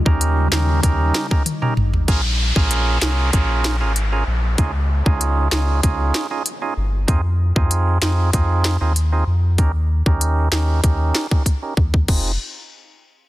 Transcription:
Already playing: ambient pad C#3 G3 D#4
0.06 sub bass D#2, tonewheel organ C#4 D#4 G4 A#4, kick
0.21 closed hi-hat
0.52 sub bass D#2, tonewheel organ C#4 D#4 G4 A#4, snare, clap
0.83 sub bass D#2, tonewheel organ C#4 D#4 G4 A#4, kick, closed hi-hat
1.15 snare, clap
1.31 tonewheel organ C#4 D#4 G4 A#4, kick
1.46 closed hi-hat, high tom
1.62 tonewheel organ C#4 D#4 G4 A#4, mid tom
1.77 sub bass G#1, mid tom
1.94 floor tom
2.08 sub bass A#1, tonewheel organ C#4 F4 G#4 A#4, kick, closed hi-hat, downlifter
2.56 sub bass A#1, tonewheel organ C#4 F4 G#4 A#4, kick
2.71 closed hi-hat
3.02 sub bass C2, tonewheel organ C#4 F4 G#4 A#4, snare, clap
3.33 sub bass A#1, tonewheel organ C#4 F4 G#4 A#4, kick, closed hi-hat
3.65 snare, clap
3.81 sub bass G#1, tonewheel organ C#4 F4 G#4 A#4
3.96 closed hi-hat
4.12 tonewheel organ C#4 F4 G#4 A#4
4.27 sub bass A#1
4.58 sub bass C#2, tonewheel organ C#4 D#4 F4 G#4, kick, closed hi-hat
5.06 sub bass C#2, tonewheel organ C#4 D#4 F4 G#4, kick
5.21 closed hi-hat
5.52 sub bass C#2, tonewheel organ C#4 D#4 F4 G#4, snare, clap
5.83 sub bass C#2, tonewheel organ C#4 D#4 F4 G#4, kick, closed hi-hat
6.15 snare, clap
6.31 tonewheel organ C#4 D#4 F4 G#4
6.46 closed hi-hat
6.62 tonewheel organ C#4 D#4 F4 G#4
6.77 sub bass G1
7.08 sub bass F2, tonewheel organ C4 D#4 F4 G#4, kick, closed hi-hat
7.56 sub bass F2, tonewheel organ C4 D#4 F4 G#4, kick
7.71 closed hi-hat
8.02 sub bass F2, tonewheel organ C4 D#4 F4 G#4, snare, clap
8.33 sub bass F2, tonewheel organ C4 D#4 F4 G#4, kick, closed hi-hat
8.65 snare, clap
8.81 sub bass D#2, tonewheel organ C4 D#4 F4 G#4
8.96 closed hi-hat
9.12 tonewheel organ C4 D#4 F4 G#4
9.27 sub bass F2
9.58 sub bass D#2, tonewheel organ C#4 D#4 G4 A#4, kick, closed hi-hat
10.06 sub bass D#2, tonewheel organ C#4 D#4 G4 A#4, kick
10.21 closed hi-hat
10.52 sub bass D#2, tonewheel organ C#4 D#4 G4 A#4, snare, clap
10.83 sub bass D#2, tonewheel organ C#4 D#4 G4 A#4, kick, closed hi-hat
11.15 snare, clap
11.31 tonewheel organ C#4 D#4 G4 A#4, kick
11.46 kick, closed hi-hat
11.62 tonewheel organ C#4 D#4 G4 A#4
11.77 sub bass D#2, kick
11.94 kick
12.08 sub bass F1, tonewheel organ C4 D#4 F4 G#4, kick, crash

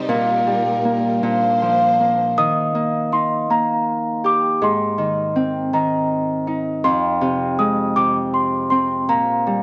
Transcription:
Already playing: harp C3 G3 C4 D#4, string section G3 D#4, celesta C6
0.08 string section A#2 A#4, harp A#2
0.47 harp G3
0.85 harp A#3
1.23 harp A#2, string section A#3 D4 C5
1.62 harp F3
2.00 harp A#3
2.37 harp D#3, celesta D#6
2.75 harp A#3
3.12 harp D#4, celesta C6
3.50 harp A#3, celesta A#5
4.24 harp G4, celesta D6
4.62 harp G#2, celesta C6
4.98 harp D#3
5.36 harp C4
5.73 harp D#3, celesta A#5
6.47 harp D#4
6.84 harp F2, celesta C6
7.21 harp C3
7.59 harp G#3, celesta D#6
7.96 harp C3, celesta D6
8.34 celesta C6
8.70 harp C4, celesta C6
9.09 harp A#2, celesta A#5
9.47 harp G3

